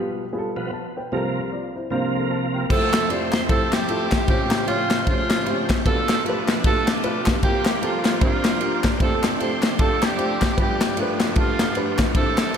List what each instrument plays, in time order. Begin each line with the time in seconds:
Already playing: upright piano B1 B2 G3 B3 F4 G4
0.33 upright piano G3 B3 F4 G#4
0.38 upright piano A4
0.56 tonewheel organ B2 F3 B3
0.73 upright piano A5
0.97 upright piano B4 G5
1.12 upright piano C2 C3 G3 C4 F4 A4, tonewheel organ C3 F3 A#3
1.17 upright piano A#4
1.52 upright piano F4 D5
1.76 upright piano E4 C5
1.90 upright piano C2 C3 A#3 D4 F4 C5, tonewheel organ C3 F3 A#3
2.15 upright piano A4 F5
2.31 upright piano C5 A5
2.54 upright piano A#4 G5
2.69 upright piano F1 F2 G3 E4 F4 G4 C5, tonewheel organ F3 A3 C4 E4 G4, saxophone section C4 E4 A4, kick, crash
2.74 upright piano A3
2.93 snare, clap, ride bell
3.09 upright piano A3 E4 F4 G4 D5, saxophone section C5, ride bell
3.32 saxophone section C5, snare, clap, ride bell
3.49 upright piano A3 E4 F4 G4 C5, saxophone section C4 E4 A4, kick, ride bell
3.72 saxophone section C4 E4 G4, snare, clap, ride bell
3.89 upright piano A3 E4 F4 G4 A4, ride bell
4.11 kick, snare, clap, ride bell
4.28 upright piano A1 A2 A3 C#4 F4 G4 C5, tonewheel organ C#3 F3 A3 G4 C5, saxophone section C4 C#4 G4, kick, ride bell
4.51 snare, clap, ride bell
4.67 upright piano A3 C#4 F4 G4 C#5, saxophone section C4 C#4 F4, ride bell
4.90 snare, clap, ride bell
5.07 upright piano A3 C#4 F4 G4 C5, saxophone section C4 C#4 F4, kick, ride bell
5.11 upright piano C#5
5.30 snare, clap, ride bell
5.46 upright piano A3 C4 F4 G4 C5, ride bell
5.51 upright piano C#4
5.69 kick, snare, clap, ride bell
5.85 upright piano B1 B2 A3 D4 F4 G4 B4, tonewheel organ B2 F3 A3 A#3 D4 G4, saxophone section D4 F4 A4, kick, ride bell
5.91 tonewheel organ B3
6.09 snare, clap, ride bell
6.24 upright piano A3 D4 F4 G4 A#4, saxophone section B4, ride bell
6.29 upright piano B4
6.48 saxophone section B4, snare, clap, ride bell
6.64 upright piano A3 D4 F4 G4 A4, saxophone section D4 F4 A4, kick, ride bell
6.87 saxophone section D4 G4, snare, clap, ride bell
7.04 upright piano A3 D4 F4 G4 B4, ride bell
7.26 kick, snare, clap, ride bell
7.42 upright piano C2 C3 A#3 C4 E4 G4 C5, tonewheel organ F3 G3 A#3 C4 F#4, saxophone section A#3 G4, kick, ride bell
7.48 upright piano F4, tonewheel organ G4
7.65 saxophone section G4, snare, clap, ride bell
7.82 upright piano A#3 C4 F4 G4 A4, saxophone section A#3 F4, ride bell
8.04 snare, clap, ride bell
8.21 upright piano C2 C3 A#3 D4 E4 G4 C5, tonewheel organ F3 A#3 C4 D4 F4, saxophone section A#3 D4 F4, kick, ride bell
8.26 upright piano F4, tonewheel organ G4
8.44 snare, clap, ride bell
8.60 upright piano A#3 D4 F4 G4 A#4, ride bell
8.84 kick, snare, clap, ride bell
9.00 upright piano F1 F2 A3 D4 F4 G4 C5, tonewheel organ F3 A3 C4 D4 G4, saxophone section C4 D4 A4, kick, ride bell
9.23 snare, clap, ride bell
9.39 upright piano A3 D4 F4 G4 A4, saxophone section C5, ride bell
9.62 saxophone section C5, snare, clap, ride bell
9.79 upright piano A3 D4 F4 G4 A4, saxophone section C4 D4 A4, kick, ride bell
10.02 saxophone section C4 D4 G4, snare, clap, ride bell
10.18 upright piano A3 D4 F4 G4 C5, ride bell
10.41 kick, snare, clap, ride bell
10.57 upright piano G1 G2 A3 D4 F4 G4 B4, tonewheel organ F3 A3 B3 D4 F#4, saxophone section B3 D4 G4, kick, ride bell
10.64 tonewheel organ G4
10.81 snare, clap, ride bell
10.97 upright piano A3 D4 F4 G4 A#4, saxophone section A3 B3 F4, ride bell
11.02 upright piano B4
11.20 snare, clap, ride bell
11.36 upright piano A3 D4 F4 G4 A4, saxophone section A3 B3 F4, kick, ride bell
11.59 snare, clap, ride bell
11.75 upright piano A3 D4 F4 G4 B4, ride bell
11.98 kick, snare, clap, ride bell
12.14 upright piano C2 C3 A#3 D4 E4 A4 C5, tonewheel organ E3 A#3 C4 D4 G4, saxophone section D4 E4 A4, kick, ride bell
12.37 snare, clap, ride bell
12.54 upright piano A#3 D4 A4 C5, ride bell